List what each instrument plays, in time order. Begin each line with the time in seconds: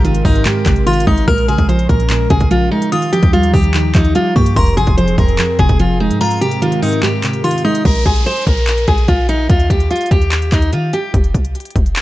Already playing: 808-style bass G#1, synth pluck G#2 C3, analog synth pad G#3 C4 A#4
0.04 synth pluck D#3, steel-string acoustic guitar F4, closed hi-hat
0.15 closed hi-hat
0.25 808-style bass G#1, synth pluck G#2, steel-string acoustic guitar D#4, kick, open hi-hat
0.35 closed hi-hat
0.45 synth pluck G#2, steel-string acoustic guitar G4, clap, closed hi-hat
0.66 808-style bass G#1, synth pluck C3, kick, clap, closed hi-hat
0.76 closed hi-hat
0.86 synth pluck D#3, steel-string acoustic guitar F4, synth bell C6, closed hi-hat
0.93 closed hi-hat
1.00 closed hi-hat
1.07 808-style bass G#1, synth pluck G#3, steel-string acoustic guitar D#4, synth bell D#6, kick
1.17 closed hi-hat
1.28 808-style bass A#1, synth pluck A#2, analog synth pad C#4 A#4, steel-string acoustic guitar A#4, synth bell F6, kick, closed hi-hat
1.38 closed hi-hat
1.48 synth pluck C#3, steel-string acoustic guitar G#4, closed hi-hat
1.58 808-style bass A#1, kick, closed hi-hat
1.69 synth pluck F3, steel-string acoustic guitar C5, closed hi-hat
1.79 closed hi-hat
1.89 808-style bass A#1, synth pluck A#2, steel-string acoustic guitar A#4, kick, closed hi-hat
2.00 closed hi-hat
2.10 synth pluck A#2, clap, closed hi-hat
2.30 808-style bass A#1, synth pluck C#3, steel-string acoustic guitar G#4, kick, closed hi-hat
2.40 kick, closed hi-hat
2.51 synth pluck F3, steel-string acoustic guitar F4, closed hi-hat
2.71 synth pluck G#3, steel-string acoustic guitar D#4
2.82 closed hi-hat
2.92 synth pluck D#3, analog synth pad F3 D#4 G4, steel-string acoustic guitar F4, synth bell D#6, closed hi-hat
3.02 closed hi-hat
3.13 synth pluck F3, steel-string acoustic guitar G4, closed hi-hat
3.23 808-style bass D#2, kick, closed hi-hat
3.33 synth pluck G3, steel-string acoustic guitar F4, closed hi-hat
3.43 closed hi-hat
3.54 808-style bass D#2, synth pluck D#3, steel-string acoustic guitar G4, kick, open hi-hat
3.64 closed hi-hat
3.74 synth pluck D#3, clap, closed hi-hat
3.94 808-style bass D#2, synth pluck F3, steel-string acoustic guitar D#4, kick, clap, closed hi-hat
4.05 closed hi-hat
4.15 synth pluck G3, steel-string acoustic guitar F4, closed hi-hat
4.36 808-style bass G2, synth pluck A#3, steel-string acoustic guitar G4, synth bell C#6, kick
4.46 closed hi-hat
4.56 808-style bass F1, synth pluck F2, analog synth pad C4 G#4, steel-string acoustic guitar A#4, synth bell C6, kick, closed hi-hat
4.66 closed hi-hat
4.77 808-style bass G#1, synth pluck C3, steel-string acoustic guitar G#4, closed hi-hat
4.87 808-style bass F1, kick, closed hi-hat
4.97 synth pluck F3, steel-string acoustic guitar C5, closed hi-hat
5.08 closed hi-hat
5.18 808-style bass F1, synth pluck F2, steel-string acoustic guitar A#4, kick, closed hi-hat
5.28 closed hi-hat
5.39 synth pluck F2, clap, closed hi-hat
5.59 808-style bass F1, synth pluck C3, steel-string acoustic guitar G#4, kick, closed hi-hat
5.69 808-style bass F1, kick, closed hi-hat
5.79 synth pluck F3, steel-string acoustic guitar F4, closed hi-hat
6.00 synth pluck G#3, steel-string acoustic guitar D#4
6.11 808-style bass G#2, closed hi-hat
6.21 synth pluck G#2, analog synth pad G#3 C4 A#4, steel-string acoustic guitar F4, synth bell A#5, closed hi-hat
6.31 closed hi-hat
6.41 synth pluck C3, steel-string acoustic guitar G4, closed hi-hat
6.51 closed hi-hat
6.62 synth pluck D#3, steel-string acoustic guitar F4, closed hi-hat
6.72 closed hi-hat
6.82 synth pluck G#2, steel-string acoustic guitar D#4, open hi-hat
6.93 closed hi-hat
7.03 synth pluck G#2, steel-string acoustic guitar G4, clap, closed hi-hat
7.23 synth pluck C3, clap, closed hi-hat
7.33 closed hi-hat
7.44 synth pluck D#3, steel-string acoustic guitar F4, synth bell C6, closed hi-hat
7.51 closed hi-hat
7.58 closed hi-hat
7.65 synth pluck G#3, steel-string acoustic guitar D#4, synth bell D#6
7.75 closed hi-hat
7.85 808-style bass A#1, steel-string acoustic guitar A#4, kick, closed hi-hat, downlifter
7.95 closed hi-hat
8.06 808-style bass A#1, steel-string acoustic guitar G#4, kick, closed hi-hat
8.16 closed hi-hat
8.26 steel-string acoustic guitar C5, closed hi-hat
8.31 closed hi-hat
8.36 closed hi-hat
8.42 closed hi-hat
8.47 808-style bass A#1, steel-string acoustic guitar A#4, kick, closed hi-hat
8.57 closed hi-hat
8.67 clap, closed hi-hat
8.78 closed hi-hat
8.88 808-style bass A#1, steel-string acoustic guitar G#4, kick, closed hi-hat
8.98 closed hi-hat
9.08 808-style bass A#1, steel-string acoustic guitar F4, kick, closed hi-hat
9.29 steel-string acoustic guitar D#4, closed hi-hat
9.49 808-style bass D#2, steel-string acoustic guitar F4, kick, closed hi-hat
9.60 closed hi-hat
9.70 808-style bass D#2, steel-string acoustic guitar G4, kick, closed hi-hat
9.80 closed hi-hat
9.91 steel-string acoustic guitar F4, closed hi-hat
9.96 closed hi-hat
10.01 closed hi-hat
10.06 closed hi-hat
10.11 808-style bass D#2, steel-string acoustic guitar G4, kick, closed hi-hat
10.22 closed hi-hat
10.32 clap, closed hi-hat
10.42 closed hi-hat
10.52 808-style bass D#2, steel-string acoustic guitar D#4, kick, clap, closed hi-hat
10.62 closed hi-hat
10.73 808-style bass D#3, steel-string acoustic guitar F4, closed hi-hat
10.93 steel-string acoustic guitar G4, closed hi-hat
11.14 808-style bass F1, kick, closed hi-hat
11.24 closed hi-hat
11.34 808-style bass C2, kick, closed hi-hat
11.45 closed hi-hat
11.55 closed hi-hat
11.60 closed hi-hat
11.65 closed hi-hat
11.71 closed hi-hat
11.76 808-style bass F1, kick, closed hi-hat
11.86 closed hi-hat
11.96 clap, closed hi-hat